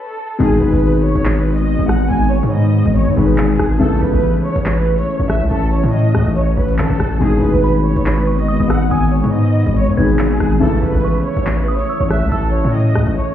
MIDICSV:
0, 0, Header, 1, 7, 480
1, 0, Start_track
1, 0, Tempo, 425532
1, 453, Time_signature, 4, 2, 24, 8
1, 15054, End_track
2, 0, Start_track
2, 0, Title_t, "Synth bell"
2, 0, Program_c, 0, 98
2, 8617, Note_on_c, 0, 83, 80
2, 9292, Note_off_c, 0, 83, 0
2, 9330, Note_on_c, 0, 85, 77
2, 9560, Note_off_c, 0, 85, 0
2, 9570, Note_on_c, 0, 87, 87
2, 9799, Note_off_c, 0, 87, 0
2, 9810, Note_on_c, 0, 88, 76
2, 10039, Note_off_c, 0, 88, 0
2, 10053, Note_on_c, 0, 87, 107
2, 10504, Note_off_c, 0, 87, 0
2, 11250, Note_on_c, 0, 92, 86
2, 11480, Note_off_c, 0, 92, 0
2, 12459, Note_on_c, 0, 85, 81
2, 13133, Note_off_c, 0, 85, 0
2, 13178, Note_on_c, 0, 87, 93
2, 13404, Note_off_c, 0, 87, 0
2, 13418, Note_on_c, 0, 88, 88
2, 13644, Note_off_c, 0, 88, 0
2, 13654, Note_on_c, 0, 90, 78
2, 13882, Note_off_c, 0, 90, 0
2, 13895, Note_on_c, 0, 88, 108
2, 14346, Note_off_c, 0, 88, 0
2, 15054, End_track
3, 0, Start_track
3, 0, Title_t, "Violin section"
3, 0, Program_c, 1, 48
3, 0, Note_on_c, 1, 69, 80
3, 423, Note_off_c, 1, 69, 0
3, 455, Note_on_c, 1, 68, 95
3, 672, Note_off_c, 1, 68, 0
3, 689, Note_on_c, 1, 71, 80
3, 1143, Note_off_c, 1, 71, 0
3, 1174, Note_on_c, 1, 73, 84
3, 1519, Note_off_c, 1, 73, 0
3, 1545, Note_on_c, 1, 71, 72
3, 1760, Note_off_c, 1, 71, 0
3, 1781, Note_on_c, 1, 75, 94
3, 2112, Note_off_c, 1, 75, 0
3, 2140, Note_on_c, 1, 78, 88
3, 2354, Note_off_c, 1, 78, 0
3, 2375, Note_on_c, 1, 80, 108
3, 2592, Note_off_c, 1, 80, 0
3, 2617, Note_on_c, 1, 73, 83
3, 2833, Note_off_c, 1, 73, 0
3, 2854, Note_on_c, 1, 75, 92
3, 3305, Note_off_c, 1, 75, 0
3, 3339, Note_on_c, 1, 73, 91
3, 3554, Note_off_c, 1, 73, 0
3, 3577, Note_on_c, 1, 71, 71
3, 3793, Note_off_c, 1, 71, 0
3, 3815, Note_on_c, 1, 68, 78
3, 4265, Note_off_c, 1, 68, 0
3, 4292, Note_on_c, 1, 69, 88
3, 4510, Note_off_c, 1, 69, 0
3, 4535, Note_on_c, 1, 71, 80
3, 4985, Note_off_c, 1, 71, 0
3, 5009, Note_on_c, 1, 73, 82
3, 5356, Note_off_c, 1, 73, 0
3, 5381, Note_on_c, 1, 71, 81
3, 5598, Note_off_c, 1, 71, 0
3, 5618, Note_on_c, 1, 73, 93
3, 5951, Note_off_c, 1, 73, 0
3, 5975, Note_on_c, 1, 76, 86
3, 6192, Note_off_c, 1, 76, 0
3, 6215, Note_on_c, 1, 69, 99
3, 6432, Note_off_c, 1, 69, 0
3, 6454, Note_on_c, 1, 73, 89
3, 6671, Note_off_c, 1, 73, 0
3, 6689, Note_on_c, 1, 75, 87
3, 7142, Note_off_c, 1, 75, 0
3, 7176, Note_on_c, 1, 73, 86
3, 7392, Note_off_c, 1, 73, 0
3, 7416, Note_on_c, 1, 71, 73
3, 7632, Note_off_c, 1, 71, 0
3, 7652, Note_on_c, 1, 69, 79
3, 8104, Note_off_c, 1, 69, 0
3, 8135, Note_on_c, 1, 68, 96
3, 8352, Note_off_c, 1, 68, 0
3, 8370, Note_on_c, 1, 71, 81
3, 8823, Note_off_c, 1, 71, 0
3, 8854, Note_on_c, 1, 73, 85
3, 9199, Note_off_c, 1, 73, 0
3, 9225, Note_on_c, 1, 71, 69
3, 9440, Note_off_c, 1, 71, 0
3, 9461, Note_on_c, 1, 75, 93
3, 9793, Note_off_c, 1, 75, 0
3, 9819, Note_on_c, 1, 78, 88
3, 10034, Note_off_c, 1, 78, 0
3, 10055, Note_on_c, 1, 80, 106
3, 10272, Note_off_c, 1, 80, 0
3, 10298, Note_on_c, 1, 73, 81
3, 10513, Note_off_c, 1, 73, 0
3, 10535, Note_on_c, 1, 75, 94
3, 10985, Note_off_c, 1, 75, 0
3, 11020, Note_on_c, 1, 73, 91
3, 11234, Note_off_c, 1, 73, 0
3, 11257, Note_on_c, 1, 71, 75
3, 11473, Note_off_c, 1, 71, 0
3, 11495, Note_on_c, 1, 68, 78
3, 11946, Note_off_c, 1, 68, 0
3, 11972, Note_on_c, 1, 69, 91
3, 12190, Note_off_c, 1, 69, 0
3, 12215, Note_on_c, 1, 71, 79
3, 12666, Note_off_c, 1, 71, 0
3, 12689, Note_on_c, 1, 73, 82
3, 13036, Note_off_c, 1, 73, 0
3, 13061, Note_on_c, 1, 71, 82
3, 13278, Note_off_c, 1, 71, 0
3, 13297, Note_on_c, 1, 73, 96
3, 13631, Note_off_c, 1, 73, 0
3, 13655, Note_on_c, 1, 76, 83
3, 13872, Note_off_c, 1, 76, 0
3, 13894, Note_on_c, 1, 69, 96
3, 14111, Note_off_c, 1, 69, 0
3, 14133, Note_on_c, 1, 73, 92
3, 14351, Note_off_c, 1, 73, 0
3, 14368, Note_on_c, 1, 75, 90
3, 14822, Note_off_c, 1, 75, 0
3, 14855, Note_on_c, 1, 73, 87
3, 15054, Note_off_c, 1, 73, 0
3, 15054, End_track
4, 0, Start_track
4, 0, Title_t, "Ambient pad"
4, 0, Program_c, 2, 92
4, 453, Note_on_c, 2, 51, 85
4, 453, Note_on_c, 2, 56, 75
4, 453, Note_on_c, 2, 59, 92
4, 4255, Note_off_c, 2, 51, 0
4, 4255, Note_off_c, 2, 56, 0
4, 4255, Note_off_c, 2, 59, 0
4, 4293, Note_on_c, 2, 52, 85
4, 4293, Note_on_c, 2, 57, 74
4, 4293, Note_on_c, 2, 61, 88
4, 8095, Note_off_c, 2, 52, 0
4, 8095, Note_off_c, 2, 57, 0
4, 8095, Note_off_c, 2, 61, 0
4, 8133, Note_on_c, 2, 51, 82
4, 8133, Note_on_c, 2, 56, 74
4, 8134, Note_on_c, 2, 59, 91
4, 11935, Note_off_c, 2, 51, 0
4, 11935, Note_off_c, 2, 56, 0
4, 11935, Note_off_c, 2, 59, 0
4, 11974, Note_on_c, 2, 52, 86
4, 11975, Note_on_c, 2, 57, 78
4, 11975, Note_on_c, 2, 61, 92
4, 15054, Note_off_c, 2, 52, 0
4, 15054, Note_off_c, 2, 57, 0
4, 15054, Note_off_c, 2, 61, 0
4, 15054, End_track
5, 0, Start_track
5, 0, Title_t, "Grand piano"
5, 0, Program_c, 3, 0
5, 436, Note_on_c, 3, 47, 77
5, 445, Note_on_c, 3, 51, 70
5, 454, Note_on_c, 3, 56, 67
5, 463, Note_on_c, 3, 63, 70
5, 472, Note_on_c, 3, 68, 76
5, 660, Control_c, 3, 64, 127
5, 3520, Note_off_c, 3, 47, 0
5, 3524, Note_off_c, 3, 51, 0
5, 3528, Note_off_c, 3, 56, 0
5, 3533, Note_off_c, 3, 63, 0
5, 3537, Note_off_c, 3, 68, 0
5, 3565, Note_on_c, 3, 47, 53
5, 3570, Note_on_c, 3, 51, 51
5, 3574, Note_on_c, 3, 56, 50
5, 3579, Note_on_c, 3, 63, 48
5, 3583, Note_on_c, 3, 68, 55
5, 4276, Note_on_c, 3, 49, 74
5, 4285, Note_on_c, 3, 52, 63
5, 4289, Note_off_c, 3, 47, 0
5, 4292, Note_off_c, 3, 51, 0
5, 4293, Note_on_c, 3, 57, 72
5, 4294, Note_off_c, 3, 56, 0
5, 4296, Note_off_c, 3, 63, 0
5, 4298, Note_off_c, 3, 68, 0
5, 4303, Note_on_c, 3, 64, 67
5, 4306, Control_c, 3, 64, 0
5, 4311, Note_on_c, 3, 69, 82
5, 4530, Control_c, 3, 64, 127
5, 8080, Note_off_c, 3, 49, 0
5, 8084, Note_off_c, 3, 52, 0
5, 8088, Note_off_c, 3, 57, 0
5, 8093, Note_off_c, 3, 64, 0
5, 8097, Note_off_c, 3, 69, 0
5, 8116, Note_on_c, 3, 47, 73
5, 8125, Note_on_c, 3, 51, 70
5, 8134, Note_on_c, 3, 56, 67
5, 8143, Note_on_c, 3, 63, 68
5, 8149, Control_c, 3, 64, 0
5, 8151, Note_on_c, 3, 68, 73
5, 8322, Control_c, 3, 64, 127
5, 11200, Note_off_c, 3, 47, 0
5, 11204, Note_off_c, 3, 51, 0
5, 11209, Note_off_c, 3, 56, 0
5, 11213, Note_off_c, 3, 63, 0
5, 11217, Note_off_c, 3, 68, 0
5, 11244, Note_on_c, 3, 47, 52
5, 11249, Note_on_c, 3, 51, 50
5, 11253, Note_on_c, 3, 56, 50
5, 11258, Note_on_c, 3, 63, 50
5, 11262, Note_on_c, 3, 68, 57
5, 11955, Note_on_c, 3, 49, 76
5, 11964, Note_on_c, 3, 52, 66
5, 11969, Note_off_c, 3, 47, 0
5, 11971, Note_off_c, 3, 51, 0
5, 11973, Note_off_c, 3, 56, 0
5, 11973, Note_on_c, 3, 57, 70
5, 11976, Note_off_c, 3, 63, 0
5, 11978, Note_off_c, 3, 68, 0
5, 11982, Note_on_c, 3, 64, 67
5, 11989, Control_c, 3, 64, 0
5, 11991, Note_on_c, 3, 69, 82
5, 12200, Control_c, 3, 64, 127
5, 15054, Note_off_c, 3, 49, 0
5, 15054, Note_off_c, 3, 52, 0
5, 15054, Note_off_c, 3, 57, 0
5, 15054, Note_off_c, 3, 64, 0
5, 15054, Note_off_c, 3, 69, 0
5, 15054, End_track
6, 0, Start_track
6, 0, Title_t, "808-style bass"
6, 0, Program_c, 4, 38
6, 453, Note_on_c, 4, 32, 112
6, 684, Note_off_c, 4, 32, 0
6, 694, Note_on_c, 4, 32, 101
6, 816, Note_off_c, 4, 32, 0
6, 821, Note_on_c, 4, 32, 106
6, 1281, Note_off_c, 4, 32, 0
6, 1301, Note_on_c, 4, 32, 105
6, 1992, Note_off_c, 4, 32, 0
6, 2021, Note_on_c, 4, 32, 107
6, 2359, Note_off_c, 4, 32, 0
6, 2374, Note_on_c, 4, 32, 113
6, 2726, Note_off_c, 4, 32, 0
6, 2741, Note_on_c, 4, 44, 103
6, 3202, Note_off_c, 4, 44, 0
6, 3221, Note_on_c, 4, 32, 111
6, 3461, Note_on_c, 4, 44, 102
6, 3478, Note_off_c, 4, 32, 0
6, 3568, Note_off_c, 4, 44, 0
6, 3574, Note_on_c, 4, 32, 104
6, 4034, Note_off_c, 4, 32, 0
6, 4054, Note_on_c, 4, 32, 100
6, 4284, Note_off_c, 4, 32, 0
6, 4293, Note_on_c, 4, 33, 115
6, 4524, Note_off_c, 4, 33, 0
6, 4534, Note_on_c, 4, 33, 104
6, 4656, Note_off_c, 4, 33, 0
6, 4661, Note_on_c, 4, 33, 104
6, 4891, Note_off_c, 4, 33, 0
6, 5141, Note_on_c, 4, 33, 101
6, 5602, Note_off_c, 4, 33, 0
6, 5861, Note_on_c, 4, 33, 107
6, 6101, Note_on_c, 4, 37, 99
6, 6118, Note_off_c, 4, 33, 0
6, 6208, Note_off_c, 4, 37, 0
6, 6214, Note_on_c, 4, 33, 112
6, 6566, Note_off_c, 4, 33, 0
6, 6581, Note_on_c, 4, 45, 109
6, 6933, Note_on_c, 4, 37, 104
6, 6950, Note_off_c, 4, 45, 0
6, 7054, Note_off_c, 4, 37, 0
6, 7061, Note_on_c, 4, 33, 101
6, 7400, Note_off_c, 4, 33, 0
6, 7414, Note_on_c, 4, 33, 106
6, 7654, Note_on_c, 4, 52, 108
6, 7671, Note_off_c, 4, 33, 0
6, 7774, Note_off_c, 4, 52, 0
6, 7780, Note_on_c, 4, 33, 103
6, 7889, Note_off_c, 4, 33, 0
6, 7894, Note_on_c, 4, 33, 104
6, 8124, Note_off_c, 4, 33, 0
6, 8134, Note_on_c, 4, 32, 110
6, 8364, Note_off_c, 4, 32, 0
6, 8374, Note_on_c, 4, 32, 104
6, 8496, Note_off_c, 4, 32, 0
6, 8501, Note_on_c, 4, 32, 101
6, 8962, Note_off_c, 4, 32, 0
6, 8981, Note_on_c, 4, 32, 103
6, 9672, Note_off_c, 4, 32, 0
6, 9701, Note_on_c, 4, 32, 103
6, 10040, Note_off_c, 4, 32, 0
6, 10054, Note_on_c, 4, 32, 113
6, 10406, Note_off_c, 4, 32, 0
6, 10421, Note_on_c, 4, 44, 102
6, 10882, Note_off_c, 4, 44, 0
6, 10901, Note_on_c, 4, 32, 104
6, 11141, Note_on_c, 4, 44, 98
6, 11158, Note_off_c, 4, 32, 0
6, 11248, Note_off_c, 4, 44, 0
6, 11254, Note_on_c, 4, 32, 100
6, 11714, Note_off_c, 4, 32, 0
6, 11734, Note_on_c, 4, 32, 105
6, 11964, Note_off_c, 4, 32, 0
6, 11974, Note_on_c, 4, 33, 117
6, 12204, Note_off_c, 4, 33, 0
6, 12214, Note_on_c, 4, 33, 106
6, 12336, Note_off_c, 4, 33, 0
6, 12341, Note_on_c, 4, 33, 103
6, 12571, Note_off_c, 4, 33, 0
6, 12821, Note_on_c, 4, 33, 103
6, 13282, Note_off_c, 4, 33, 0
6, 13541, Note_on_c, 4, 33, 113
6, 13781, Note_on_c, 4, 37, 101
6, 13797, Note_off_c, 4, 33, 0
6, 13888, Note_off_c, 4, 37, 0
6, 13893, Note_on_c, 4, 33, 111
6, 14246, Note_off_c, 4, 33, 0
6, 14260, Note_on_c, 4, 45, 106
6, 14613, Note_on_c, 4, 37, 98
6, 14630, Note_off_c, 4, 45, 0
6, 14734, Note_off_c, 4, 37, 0
6, 14740, Note_on_c, 4, 33, 102
6, 14849, Note_off_c, 4, 33, 0
6, 15054, End_track
7, 0, Start_track
7, 0, Title_t, "Drums"
7, 453, Note_on_c, 9, 42, 90
7, 453, Note_on_c, 9, 49, 108
7, 566, Note_off_c, 9, 42, 0
7, 566, Note_off_c, 9, 49, 0
7, 821, Note_on_c, 9, 42, 50
7, 896, Note_off_c, 9, 42, 0
7, 896, Note_on_c, 9, 42, 65
7, 976, Note_off_c, 9, 42, 0
7, 976, Note_on_c, 9, 42, 76
7, 1089, Note_off_c, 9, 42, 0
7, 1302, Note_on_c, 9, 42, 92
7, 1414, Note_off_c, 9, 42, 0
7, 1414, Note_on_c, 9, 39, 114
7, 1416, Note_on_c, 9, 42, 71
7, 1527, Note_off_c, 9, 39, 0
7, 1529, Note_off_c, 9, 42, 0
7, 1781, Note_on_c, 9, 42, 100
7, 1894, Note_off_c, 9, 42, 0
7, 2135, Note_on_c, 9, 37, 101
7, 2136, Note_on_c, 9, 42, 80
7, 2247, Note_off_c, 9, 37, 0
7, 2249, Note_off_c, 9, 42, 0
7, 2264, Note_on_c, 9, 42, 78
7, 2373, Note_off_c, 9, 42, 0
7, 2373, Note_on_c, 9, 42, 91
7, 2486, Note_off_c, 9, 42, 0
7, 2741, Note_on_c, 9, 42, 77
7, 2854, Note_off_c, 9, 42, 0
7, 3222, Note_on_c, 9, 42, 91
7, 3335, Note_off_c, 9, 42, 0
7, 3336, Note_on_c, 9, 42, 72
7, 3449, Note_off_c, 9, 42, 0
7, 3701, Note_on_c, 9, 42, 98
7, 3813, Note_off_c, 9, 42, 0
7, 3813, Note_on_c, 9, 39, 117
7, 3817, Note_on_c, 9, 42, 84
7, 3926, Note_off_c, 9, 39, 0
7, 3930, Note_off_c, 9, 42, 0
7, 4054, Note_on_c, 9, 37, 99
7, 4056, Note_on_c, 9, 42, 76
7, 4167, Note_off_c, 9, 37, 0
7, 4169, Note_off_c, 9, 42, 0
7, 4181, Note_on_c, 9, 42, 43
7, 4256, Note_off_c, 9, 42, 0
7, 4256, Note_on_c, 9, 42, 60
7, 4336, Note_off_c, 9, 42, 0
7, 4336, Note_on_c, 9, 42, 75
7, 4449, Note_off_c, 9, 42, 0
7, 4661, Note_on_c, 9, 42, 47
7, 4736, Note_off_c, 9, 42, 0
7, 4736, Note_on_c, 9, 42, 65
7, 4816, Note_off_c, 9, 42, 0
7, 4816, Note_on_c, 9, 42, 81
7, 4929, Note_off_c, 9, 42, 0
7, 5142, Note_on_c, 9, 42, 90
7, 5254, Note_on_c, 9, 39, 113
7, 5255, Note_off_c, 9, 42, 0
7, 5256, Note_on_c, 9, 42, 72
7, 5367, Note_off_c, 9, 39, 0
7, 5368, Note_off_c, 9, 42, 0
7, 5620, Note_on_c, 9, 42, 97
7, 5733, Note_off_c, 9, 42, 0
7, 5974, Note_on_c, 9, 37, 100
7, 5976, Note_on_c, 9, 42, 76
7, 6087, Note_off_c, 9, 37, 0
7, 6089, Note_off_c, 9, 42, 0
7, 6103, Note_on_c, 9, 42, 76
7, 6213, Note_off_c, 9, 42, 0
7, 6213, Note_on_c, 9, 42, 92
7, 6326, Note_off_c, 9, 42, 0
7, 6581, Note_on_c, 9, 42, 50
7, 6637, Note_off_c, 9, 42, 0
7, 6637, Note_on_c, 9, 42, 60
7, 6694, Note_off_c, 9, 42, 0
7, 6694, Note_on_c, 9, 42, 67
7, 6757, Note_off_c, 9, 42, 0
7, 6757, Note_on_c, 9, 42, 78
7, 6870, Note_off_c, 9, 42, 0
7, 6933, Note_on_c, 9, 37, 104
7, 7046, Note_off_c, 9, 37, 0
7, 7062, Note_on_c, 9, 42, 90
7, 7174, Note_off_c, 9, 42, 0
7, 7176, Note_on_c, 9, 42, 71
7, 7289, Note_off_c, 9, 42, 0
7, 7540, Note_on_c, 9, 42, 99
7, 7653, Note_off_c, 9, 42, 0
7, 7653, Note_on_c, 9, 39, 110
7, 7657, Note_on_c, 9, 42, 85
7, 7766, Note_off_c, 9, 39, 0
7, 7770, Note_off_c, 9, 42, 0
7, 7894, Note_on_c, 9, 37, 100
7, 7896, Note_on_c, 9, 42, 75
7, 8007, Note_off_c, 9, 37, 0
7, 8009, Note_off_c, 9, 42, 0
7, 8021, Note_on_c, 9, 42, 42
7, 8134, Note_off_c, 9, 42, 0
7, 8134, Note_on_c, 9, 42, 78
7, 8246, Note_off_c, 9, 42, 0
7, 8501, Note_on_c, 9, 42, 49
7, 8576, Note_off_c, 9, 42, 0
7, 8576, Note_on_c, 9, 42, 64
7, 8656, Note_off_c, 9, 42, 0
7, 8656, Note_on_c, 9, 42, 80
7, 8769, Note_off_c, 9, 42, 0
7, 8982, Note_on_c, 9, 42, 92
7, 9094, Note_off_c, 9, 42, 0
7, 9094, Note_on_c, 9, 39, 114
7, 9096, Note_on_c, 9, 42, 73
7, 9207, Note_off_c, 9, 39, 0
7, 9208, Note_off_c, 9, 42, 0
7, 9461, Note_on_c, 9, 42, 98
7, 9573, Note_off_c, 9, 42, 0
7, 9815, Note_on_c, 9, 37, 98
7, 9817, Note_on_c, 9, 42, 77
7, 9928, Note_off_c, 9, 37, 0
7, 9929, Note_off_c, 9, 42, 0
7, 9944, Note_on_c, 9, 42, 77
7, 10054, Note_off_c, 9, 42, 0
7, 10054, Note_on_c, 9, 42, 93
7, 10167, Note_off_c, 9, 42, 0
7, 10422, Note_on_c, 9, 42, 80
7, 10535, Note_off_c, 9, 42, 0
7, 10902, Note_on_c, 9, 42, 89
7, 11015, Note_off_c, 9, 42, 0
7, 11016, Note_on_c, 9, 42, 73
7, 11129, Note_off_c, 9, 42, 0
7, 11381, Note_on_c, 9, 42, 98
7, 11493, Note_on_c, 9, 39, 110
7, 11494, Note_off_c, 9, 42, 0
7, 11497, Note_on_c, 9, 42, 86
7, 11606, Note_off_c, 9, 39, 0
7, 11610, Note_off_c, 9, 42, 0
7, 11735, Note_on_c, 9, 37, 101
7, 11736, Note_on_c, 9, 42, 78
7, 11848, Note_off_c, 9, 37, 0
7, 11849, Note_off_c, 9, 42, 0
7, 11861, Note_on_c, 9, 42, 46
7, 11936, Note_off_c, 9, 42, 0
7, 11936, Note_on_c, 9, 42, 58
7, 12016, Note_off_c, 9, 42, 0
7, 12016, Note_on_c, 9, 42, 76
7, 12129, Note_off_c, 9, 42, 0
7, 12341, Note_on_c, 9, 42, 50
7, 12416, Note_off_c, 9, 42, 0
7, 12416, Note_on_c, 9, 42, 64
7, 12496, Note_off_c, 9, 42, 0
7, 12496, Note_on_c, 9, 42, 78
7, 12609, Note_off_c, 9, 42, 0
7, 12822, Note_on_c, 9, 42, 88
7, 12934, Note_on_c, 9, 39, 114
7, 12935, Note_off_c, 9, 42, 0
7, 12936, Note_on_c, 9, 42, 70
7, 13047, Note_off_c, 9, 39, 0
7, 13049, Note_off_c, 9, 42, 0
7, 13300, Note_on_c, 9, 42, 100
7, 13413, Note_off_c, 9, 42, 0
7, 13654, Note_on_c, 9, 37, 100
7, 13656, Note_on_c, 9, 42, 77
7, 13767, Note_off_c, 9, 37, 0
7, 13769, Note_off_c, 9, 42, 0
7, 13783, Note_on_c, 9, 42, 78
7, 13893, Note_off_c, 9, 42, 0
7, 13893, Note_on_c, 9, 42, 89
7, 14006, Note_off_c, 9, 42, 0
7, 14260, Note_on_c, 9, 42, 47
7, 14317, Note_off_c, 9, 42, 0
7, 14317, Note_on_c, 9, 42, 60
7, 14374, Note_off_c, 9, 42, 0
7, 14374, Note_on_c, 9, 42, 69
7, 14437, Note_off_c, 9, 42, 0
7, 14437, Note_on_c, 9, 42, 80
7, 14550, Note_off_c, 9, 42, 0
7, 14613, Note_on_c, 9, 37, 106
7, 14725, Note_off_c, 9, 37, 0
7, 14741, Note_on_c, 9, 42, 90
7, 14854, Note_off_c, 9, 42, 0
7, 15054, End_track
0, 0, End_of_file